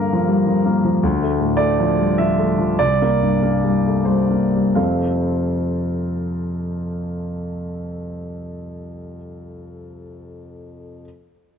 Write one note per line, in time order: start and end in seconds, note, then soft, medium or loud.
0.00 1.01 G2 soft
0.00 1.06 D3 soft
0.00 0.66 A#3 soft
0.00 0.76 A#4 medium
0.13 0.42 F3 soft
0.28 0.48 G3 soft
0.47 0.77 F3 soft
0.66 0.96 A#3 soft
0.84 1.03 F3 soft
1.03 2.74 D2 medium
1.22 1.52 A3 soft
1.40 1.71 A2 soft
1.57 1.90 A3 soft
1.57 2.17 D5 medium
1.80 2.11 F3 soft
1.98 2.18 G3 soft
2.18 2.50 F3 soft
2.18 2.79 E5 medium
2.38 2.71 A3 soft
2.58 2.79 F3 soft
2.79 4.73 C2 soft
2.79 4.07 D5 medium
3.02 3.34 A#3 soft
3.21 3.55 G2 soft
3.42 3.76 A#3 soft
3.64 3.98 G3 soft
3.87 4.08 A3 soft
4.05 4.44 G3 soft
4.05 4.75 C5 soft
4.30 4.68 A#3 soft
4.55 4.77 G3 soft
4.75 9.16 F2 soft
4.75 9.16 C3 soft
4.75 9.16 A3 soft
4.75 9.17 C4 soft
4.75 9.16 A4 soft
4.75 9.17 C5 soft
4.75 9.16 F5 soft